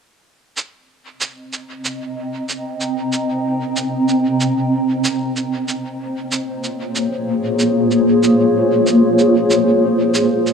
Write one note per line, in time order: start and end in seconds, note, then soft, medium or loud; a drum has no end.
0.57 5.68 C4 medium
0.57 cabasa soft
0.84 10.53 C5 medium
0.84 7.10 D#5 medium
0.93 7.74 A#5 medium
1.04 7.22 G5 medium
1.21 cabasa soft
1.53 cabasa soft
1.85 cabasa soft
2.49 cabasa soft
2.81 cabasa soft
3.13 cabasa soft
3.76 cabasa soft
4.08 cabasa soft
4.41 cabasa soft
5.04 cabasa soft
5.36 cabasa soft
5.68 10.53 A#3 medium
5.68 cabasa soft
5.87 10.53 F4 medium
5.87 10.53 C#5 medium
6.00 10.53 G#4 medium
6.32 cabasa soft
6.64 cabasa soft
6.96 cabasa soft
7.59 cabasa soft
7.91 cabasa soft
8.23 cabasa soft
8.87 cabasa soft
9.19 cabasa soft
9.50 cabasa soft
10.14 cabasa soft
10.47 cabasa soft